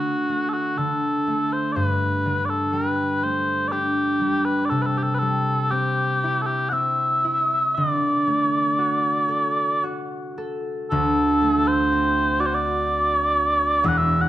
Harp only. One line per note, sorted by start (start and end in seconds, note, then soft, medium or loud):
0.00 0.77 D3 soft
0.00 0.29 A3 soft
0.29 1.27 A3 soft
0.78 1.79 D3 soft
1.27 3.22 A3 soft
1.76 4.73 G2 soft
2.25 4.73 D3 soft
2.73 4.20 G3 soft
3.23 6.56 A3 soft
3.73 6.53 D4 soft
4.21 4.73 G3 soft
4.71 7.78 C3 medium
5.22 7.78 G3 soft
5.71 6.71 C4 soft
6.24 7.24 E4 soft
6.72 9.72 C4 soft
7.24 9.85 E4 soft
7.77 10.90 D3 medium
8.27 11.41 A3 soft
8.78 9.83 F#4 soft
9.28 10.37 A4 soft
9.83 12.27 F#4 soft
10.38 12.57 A4 soft
10.91 13.87 D2 medium
10.91 13.87 D3 medium
11.41 14.29 A3 medium
11.92 14.29 C4 soft
12.40 14.29 F#4 soft
13.83 14.29 E1 medium
13.83 14.29 E2 medium